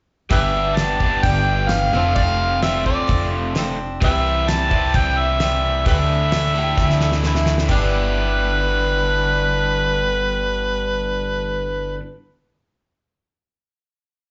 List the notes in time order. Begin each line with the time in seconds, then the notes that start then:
0.30 G1 G2 D3 E3 G3 B3 D4 G4 B4 E5, kick, open hi-hat
0.54 E3 G3 B3 G4
0.76 E3 G3 A5, snare, open hi-hat
0.80 B3 G4
1.00 E3 G3 B3 D4 G4, kick
1.23 G1 G2 D3 E3 G3 B3 G4 G5, kick, open hi-hat
1.68 E3 G3 B3 F5, snare, open hi-hat
1.73 G4
1.93 F1 F2 C3 F3 A3 C4 D4 F4 A4
2.15 D5 F5, kick, open hi-hat
2.62 F2 C3 F3 A3 C4 D4 F4 A4 E5, snare, open hi-hat
2.86 C4 D4 A4 D5, kick
3.07 F1 F3 C4 D4 A4, kick, open hi-hat
3.55 F3 C4 D4 A4, snare, open hi-hat
4.02 C2 C3 E3 G3 C4 E4 G4 B4 E5, kick, open hi-hat
4.48 E3 G3 E4 G4 A5, snare, open hi-hat
4.71 C3 E3 G3 C4 E4 G4, kick
4.94 C2 C3 E3 G3 E4 G4 G5, kick, open hi-hat
5.18 E5
5.40 E3 G3 E4 G4, snare, open hi-hat
5.86 D2 D3 E3 A3 D4 E4 G4 B4 E5, kick, open hi-hat
6.32 E3 A3 D4 E4, snare, open hi-hat
6.56 D3 A3 D4 E4 G4
6.77 D2 D3 E3 A3 D4 E4, kick, snare
6.90 snare
7.01 A4, snare
7.12 snare
7.23 E3 A3 D4 E4, snare
7.35 snare
7.46 snare
7.58 snare
7.66 G1 G2 D3, kick, crash
7.70 E3 G3 B3 D4 G4 B4
7.75 B3 E4